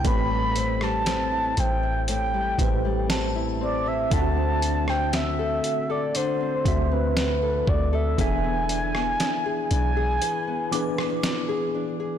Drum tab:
HH |x-x-x-x-x-x-x---|x-x-x-x-x-x-x---|x-x-x-x-x-x-x---|
SD |---ro-------o---|---ro-------o---|---ro------ro---|
BD |o---------o-----|o---------o---o-|o---------------|